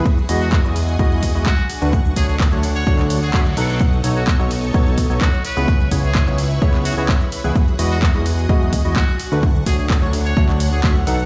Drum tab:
HH |--o---o---o---o-|--o---o---o---o-|--o---o---o---o-|--o---o---o---o-|
SH |xxxxxxxxxxxxxxxx|xxxxxxxxxxxxxxxx|xxxxxxxxxxxxxxxx|xxxxxxxxxxxxxxxx|
CP |----x-------x---|----x----x--x---|----x-------x---|----x----x--x---|
BD |o---o---o-o-o---|o-o-o---o---o---|o---o---o-o-o---|o-o-o---o---o---|

HH |--o---o---o---o-|--o---o---o---o-|
SH |xxxxxxxxxxxxxxxx|xxxxxxxxxxxxxxxx|
CP |----x-------x---|----x----x--x---|
BD |o---o---o-o-o---|o-o-o---o---o---|